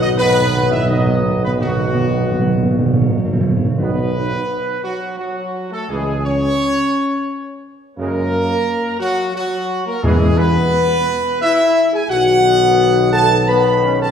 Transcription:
Already playing: tuba B1, trombone section D#3 B3
0.00 french horn section D#4, trumpet section D#5
0.08 timpani B2
0.15 timpani B2, trombone section D#3 B3, french horn section B3, trumpet section B4
0.23 timpani B2
0.31 timpani B2
0.39 timpani B2
0.46 timpani B2
0.54 timpani B2
0.61 timpani B2
0.69 timpani B2, french horn section E4, trumpet section E5
0.77 timpani B2
0.84 timpani B2
0.88 timpani B2, trombone section D#3 B3, french horn section D#4, trumpet section D#5
0.99 timpani B2
1.06 timpani B2
1.14 timpani B2
1.22 timpani B2
1.30 timpani B2
1.38 timpani B2
1.42 timpani B2, french horn section B3, trumpet section B4
1.53 timpani B2
1.60 timpani B2, trombone section D#3 B3, french horn section F#3, trumpet section F#4
1.69 timpani B2
1.77 timpani B2
1.85 timpani B2
1.93 timpani B2
2.00 timpani B2
2.08 timpani B2
2.16 timpani B2
2.24 timpani B2
2.31 timpani B2
2.39 timpani B2
2.47 timpani B2
2.55 timpani B2
2.63 timpani B2
2.71 timpani B2
2.79 timpani B2
2.86 timpani B2
2.94 timpani B2
3.02 timpani B2
3.10 timpani B2
3.18 timpani B2
3.25 timpani B2
3.33 timpani B2
3.41 timpani B2
3.49 timpani B2
3.57 timpani B2
3.64 timpani B2
3.77 tuba B1, timpani B2, trombone section D#3 B3, french horn section B3, trumpet section B4
4.83 french horn section F#3, trumpet section F#4
5.18 french horn section F#3, trumpet section F#4
5.71 french horn section A3, trumpet section A4
5.89 tuba C#2, trombone section E3 G#3, french horn section G#3, trumpet section G#4
6.25 french horn section C#4, trumpet section C#5
7.97 tuba F#2, trombone section C#3 G#3, french horn section A#3, trumpet section A#4
9.00 french horn section F#3, trumpet section F#4
9.34 french horn section F#3, trumpet section F#4
9.86 french horn section A#3, trumpet section A#4
10.03 timpani E2, tuba E2, trombone section E3 G#3, french horn section G#3, trumpet section G#4
10.38 french horn section B3, trumpet section B4
11.41 french horn section E4, trumpet section E5
11.93 french horn section G#4, trumpet section G#5
12.09 tuba B1, trombone section D#3 B3, french horn section F#4, trumpet section F#5
13.12 french horn section A4, trumpet section A5
13.47 trombone section D#3 B3, french horn section B4, trumpet section B5
13.83 trombone section C#4
13.99 french horn section A4, trumpet section A5

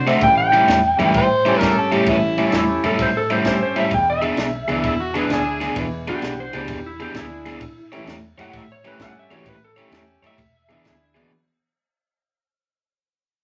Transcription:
Already playing: fingered electric bass C3, horn section D4 F#4 C5
0.07 overdriven electric guitar D3 A3 C4 F#4, electric slide guitar E5, snare, ride
0.21 fingered electric bass A1, upright piano E3 G3 A3 C#4 E4, electric slide guitar G5, kick, ride
0.37 electric slide guitar G5
0.52 overdriven electric guitar A2 G3 C#4 E4, ride
0.68 fingered electric bass E2, snare, ride
0.97 fingered electric bass F#2, overdriven electric guitar A2 G3 C#4 E4, upright piano E3 G3 A3 C#4 E4, ride
1.14 fingered electric bass A2, harmonica C5, kick, ride
1.45 overdriven electric guitar A2 G3 C#4 E4, horn section C#4 G4 A4, ride
1.59 fingered electric bass G2, horn section C#4 G4 A4, harmonica A#4, kick, snare, ride
1.78 harmonica A4
1.92 overdriven electric guitar A2 G3 C#4 E4, harmonica G4, ride
2.06 fingered electric bass A1, upright piano E3 G3 A3 C#4 E4, harmonica B3 C#4 E4, kick, ride
2.37 overdriven electric guitar A2 G3 C#4 E4, horn section C#4 G4 A4, ride
2.52 fingered electric bass E2, electric slide guitar E4, snare, ride
2.83 fingered electric bass F#2, overdriven electric guitar A2 G3 C#4 E4, electric slide guitar A4, ride
2.99 fingered electric bass A2, electric slide guitar C5, kick, ride
3.17 electric slide guitar A4
3.30 overdriven electric guitar A2 G3 C#4 E4, electric slide guitar C5, ride
3.45 fingered electric bass G2, horn section C#4 G4 A4, electric slide guitar C5, kick, snare, ride
3.63 electric slide guitar C5
3.76 overdriven electric guitar A2 G3 C#4 E4, electric slide guitar E5, ride
3.91 fingered electric bass E1, upright piano E3 G#3 B3 D4 E4, electric slide guitar G5, kick, ride
4.10 electric slide guitar E5
4.22 overdriven electric guitar E3 B3 D4 G#4, ride
4.36 fingered electric bass B1, snare, ride
4.68 fingered electric bass C#2, upright piano E3 G#3 B3 D4 E4, overdriven electric guitar E3 B3 D4 G#4, ride
4.83 fingered electric bass E2, harmonica E4, kick, ride
5.02 harmonica F#4
5.14 overdriven electric guitar E3 B3 D4 G#4, horn section D4 E4 G#4, harmonica B4, ride
5.29 fingered electric bass D2, horn section D4 E4 G#4, harmonica G#4, kick, snare, ride
5.61 overdriven electric guitar E3 B3 D4 G#4, snare, ride
5.75 fingered electric bass E1, upright piano E3 G#3 B3 D4 E4, kick, ride
6.07 overdriven electric guitar E3 B3 D4 G#4, horn section D4 E4 F#5, electric slide guitar G4, ride
6.22 fingered electric bass B1, snare, ride
6.40 electric slide guitar C5
6.53 fingered electric bass C#2, overdriven electric guitar E3 B3 D4 G#4, electric slide guitar G4, ride
6.68 fingered electric bass E2, kick, ride
6.86 electric slide guitar E4
7.00 overdriven electric guitar E3 B3 D4 G#4, electric slide guitar G4, ride
7.14 fingered electric bass D2, horn section D4 E4 G#4, electric slide guitar E4, kick, snare, ride
7.46 overdriven electric guitar E3 B3 D4 G#4, snare, ride
7.61 fingered electric bass A1, kick, ride
7.92 upright piano E3 G3 A3 C#4 E4, overdriven electric guitar A3 E4 G4 C#5, ride
8.06 fingered electric bass E2, snare, ride
8.38 fingered electric bass F#2, overdriven electric guitar A3 E4 G4 C#5, electric slide guitar F#5, ride
8.53 fingered electric bass A2, electric slide guitar E5, kick, ride
8.72 electric slide guitar C#5
8.84 overdriven electric guitar A3 E4 G4 C#5, horn section C#4 G4 A4, electric slide guitar B4, ride
8.99 fingered electric bass G2, horn section C#4 G4 A4, electric slide guitar F#5, kick, snare, ride
9.19 electric slide guitar E5
9.29 upright piano E3 G3 A3 C#4 F#4, overdriven electric guitar A3 E4 G4 C#5, ride
9.34 electric slide guitar C#5
9.46 fingered electric bass A1, electric slide guitar B4, kick, ride
9.65 electric slide guitar A4
9.77 overdriven electric guitar A3 E4 G4 C#5, horn section C#4 G4 A4, ride
9.90 fingered electric bass E2, snare, ride
10.22 fingered electric bass F#2, overdriven electric guitar A3 E4 G4 C#5, ride
10.27 electric slide guitar E5
10.38 fingered electric bass E1, kick, ride
10.69 upright piano E3 G#3 B3 D4 E4, overdriven electric guitar E3 B3 D4 G#4, electric slide guitar E5, ride
10.84 fingered electric bass D2, horn section D4 E4 G#4, kick, snare, ride
11.15 upright piano E3 G#3 B3 D4 F#4, overdriven electric guitar E3 B3 D4 G#4, ride

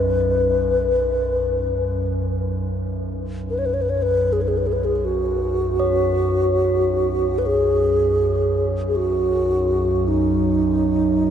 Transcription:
Already playing: ambient pad B1 F#2, alto flute B4, singing bowl B4
3.50 alto flute B4
3.59 alto flute C#5
3.66 alto flute B4
3.74 alto flute C#5
3.79 ambient pad B1 F#2, alto flute B4
3.90 alto flute C#5
4.02 alto flute B4
4.33 alto flute G#4
4.42 alto flute B4
4.48 alto flute G#4
4.57 alto flute B4
4.67 alto flute G#4
4.73 alto flute B4
4.84 alto flute G#4
4.96 alto flute G#4
5.05 alto flute F#4
5.80 singing bowl C#5
7.38 alto flute B4
7.46 alto flute G#4
8.88 alto flute G#4
8.96 alto flute F#4
10.08 alto flute D#4

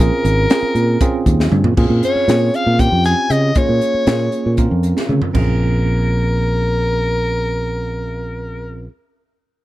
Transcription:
0.00 tine electric piano C4 C#4 F4 G#4, soprano saxophone A#4
0.24 fretless electric bass G#1, closed hi-hat
0.50 tine electric piano C4 C#4 F4 G#4, snare, closed hi-hat
0.62 muted fretless electric bass stroke
0.75 fretless electric bass A#2, closed hi-hat
1.01 tine electric piano C4 C#4 F4 G#4, kick, closed hi-hat
1.26 fretless electric bass D#2, kick, closed hi-hat
1.40 snare
1.52 fretless electric bass G2, mid tom
1.64 fretless electric bass A#2, floor tom
1.77 fretless electric bass A#2, tine electric piano C4 C#4 F4 G#4, kick, crash
1.90 fretless electric bass A#2
2.03 soprano saxophone C#5, closed hi-hat
2.15 muted fretless electric bass stroke
2.28 fretless electric bass A#2, tine electric piano C4 C#4 F4 G#4, snare, closed hi-hat
2.54 soprano saxophone F5, closed hi-hat
2.66 fretless electric bass A#2
2.79 tine electric piano C4 C#4 F4 G4, soprano saxophone G5, kick, closed hi-hat
2.92 fretless electric bass F2
3.04 soprano saxophone G#5, closed hi-hat
3.30 fretless electric bass C#3, soprano saxophone D#5, closed hi-hat
3.55 tine electric piano A#3 C#4 F4 G#4, soprano saxophone C#5, kick, closed hi-hat
3.69 fretless electric bass A#2
3.81 closed hi-hat
3.94 muted fretless electric bass stroke
4.07 fretless electric bass A#2, tine electric piano A#3 C#4 F4 G#4, snare, closed hi-hat
4.32 closed hi-hat
4.46 fretless electric bass A#2
4.57 tine electric piano C4 C#4 F4 A#4, kick, closed hi-hat
4.71 fretless electric bass F2
4.83 closed hi-hat
4.97 snare
5.09 fretless electric bass C#3, mid tom
5.22 floor tom
5.33 fretless electric bass A#1, tine electric piano C4 C#4 F4 G#4, soprano saxophone A#4, kick, floor tom, crash

